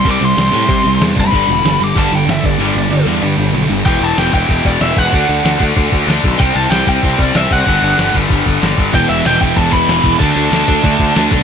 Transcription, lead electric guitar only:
X:1
M:4/4
L:1/8
Q:1/4=189
K:Em
V:1 name="Lead electric guitar"
d' c' c'4 z b- | b3 d' a g e d- | d3 z4 z | g a g g2 d e f- |
f3 z4 z | g a g g2 d e f- | f3 z4 z | g e g g a b3 |
a a6 z |]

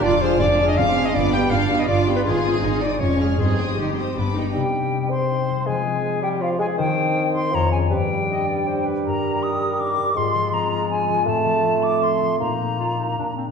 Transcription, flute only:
X:1
M:3/4
L:1/8
Q:1/4=161
K:Cm
V:1 name="Flute"
z6 | z6 | z6 | z6 |
g3 c'3 | a3 g f a | g3 c' b a | g4- g z |
[K:Eb] b2 e'2 d'2 | c'2 b2 a2 | =a3 d' c'2 | b4- b z |]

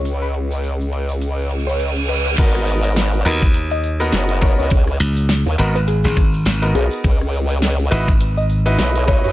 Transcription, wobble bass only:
X:1
M:4/4
L:1/16
Q:"Swing 16ths" 1/4=103
K:G#m
V:1 name="Wobble bass" clef=bass
C,,16 | G,,,6 z6 F,,,3 C,,- | C,,2 z3 D,, z8 B,,, z | C,,6 z6 B,,,3 F,, |]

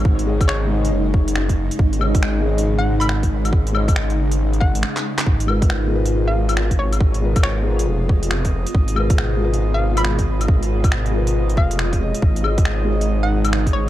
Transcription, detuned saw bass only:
X:1
M:4/4
L:1/8
Q:"Swing 16ths" 1/4=138
K:G#dor
V:1 name="Detuned saw bass" clef=bass
G,,,4 F,,,3 z | G,,,8 | G,,,6 z2 | G,,,8 |
G,,,4 E,,,3 z | G,,,8 | G,,,4- G,,, E,,,2 z | G,,,8 |]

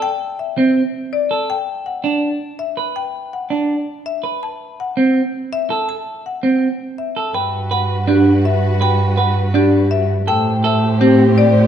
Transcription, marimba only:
X:1
M:4/4
L:1/8
Q:1/4=164
K:G
V:1 name="Marimba"
g z e z3 d z | g z f z3 e z | g z f z3 e z | a z f z3 e z |
a z f z3 e z | g z f z G z e z | g z f z G z e z | g z e z G z d z |]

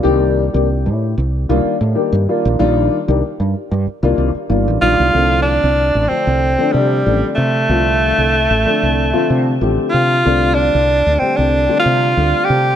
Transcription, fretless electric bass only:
X:1
M:4/4
L:1/16
Q:"Swing 16ths" 1/4=94
K:Dphr
V:1 name="Fretless electric bass" clef=bass
C,,3 C,,2 A,,2 C,,2 C,, z A,, z G,, z B,,, | B,,,2 z C,, z G,, z G,, z C,, C,, z G,,, A,,, B,,, C,, | C,,3 C,,2 A,,, z C,,2 z C,2 A,,, z C,2 | C,,3 C,,2 A,,, z C,,2 z C,2 A,,, z C,2 |
C,,3 C,,2 D,, z C,,2 z C,2 D,, z C,2 |]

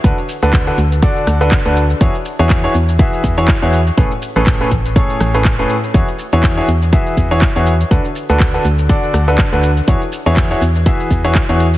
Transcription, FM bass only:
X:1
M:4/4
L:1/16
Q:"Swing 16ths" 1/4=122
K:Emix
V:1 name="FM bass" clef=bass
D,, z2 D,,2 z D,,2 z2 D,,2 z D,,2 z | E,, z2 E,,2 z E,,2 z2 E,,2 z E,,2 z | A,,, z2 A,,,2 z A,,,2 z2 A,,,3 E,,, z2 | E,, z2 E,,2 z E,,2 z2 E,,2 z E,,2 z |
D,, z2 D,,2 z D,,2 z2 D,,2 z D,,2 z | E,, z2 E,,2 z E,,2 z2 E,,2 z E,,2 z |]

